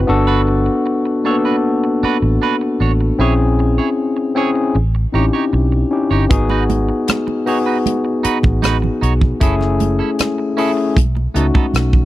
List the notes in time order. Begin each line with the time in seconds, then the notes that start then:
Already playing: C4 E4 F#4 B4
0.07 G1 B3 D4 F#4 A4, muted clean electric guitar stroke
0.27 D4 F#4 B4
0.47 muted clean electric guitar stroke
0.66 muted clean electric guitar stroke
0.86 muted clean electric guitar stroke
1.05 muted clean electric guitar stroke
1.24 A#3 D4 F#4 A4 C#5
1.31 B3
1.45 D4 F#4 B4
1.84 muted clean electric guitar stroke
2.03 D4 F#4 B4, muted fingered electric bass stroke
2.22 A1, muted clean electric guitar stroke
2.42 D4 F#4 B4
2.61 muted clean electric guitar stroke
2.80 A1 D4 F#4 C#5
3.01 muted clean electric guitar stroke
3.19 A#1 C4 C#4 E4 G#4 C#5
3.59 muted clean electric guitar stroke
3.78 E4 G#4 C#5
4.17 muted clean electric guitar stroke
4.35 C4 C#4 E4 G#4 C#5
4.55 muted clean electric guitar stroke
4.75 A1, muted clean electric guitar stroke
4.95 muted clean electric guitar stroke
5.13 A1 C4 D#4 E4 G4 C#5
5.19 C#4
5.33 D#4 G4 C#5
5.53 B1, muted clean electric guitar stroke
5.72 muted clean electric guitar stroke
5.91 C#4 D#4 E4 G4
6.11 G1 D#4 G4 C#5
6.29 G#1 B3 D#4 F#4 G#4, muted clean electric guitar stroke, kick, closed hi-hat, muted conga
6.50 D#4 F#4 B4, muted conga
6.69 muted clean electric guitar stroke, closed hi-hat, high conga
6.89 muted clean electric guitar stroke
7.08 muted clean electric guitar stroke, cross-stick, closed hi-hat, muted conga, high conga
7.27 muted clean electric guitar stroke, muted conga
7.46 B3 D#4 F#4 G#4 C#5, open hi-hat
7.66 D#4 F#4 B4
7.86 closed hi-hat, muted conga, high conga
8.05 muted clean electric guitar stroke
8.23 D#4 F#4 B4, muted fingered electric bass stroke, closed hi-hat
8.43 A1, muted clean electric guitar stroke, kick, high conga
8.62 D#4 F#4 B4, cross-stick, closed hi-hat, muted conga, high conga
8.82 muted clean electric guitar stroke, low conga
9.01 B1 D#4 F#4 C#5, closed hi-hat
9.21 muted clean electric guitar stroke, kick, low conga
9.40 F#1 A3 C#4 E4 G#4 A4, kick, closed hi-hat, muted conga
9.61 cross-stick, muted conga
9.80 muted clean electric guitar stroke, closed hi-hat, high conga
9.99 C#4 E4 A4
10.19 cross-stick, closed hi-hat, muted conga, high conga
10.38 muted clean electric guitar stroke
10.57 A3 C#4 E4 G#4 A4, open hi-hat
10.77 muted clean electric guitar stroke
10.97 B1, muted clean electric guitar stroke, kick, closed hi-hat, muted conga, high conga
11.15 muted clean electric guitar stroke, muted conga
11.34 C#2 A3 B3 C#4 D#4 F#4 A4, closed hi-hat
11.54 B3 D#4 A4, kick, high conga
11.74 B1, cross-stick, closed hi-hat, high conga
11.93 muted clean electric guitar stroke, kick, muted conga, low conga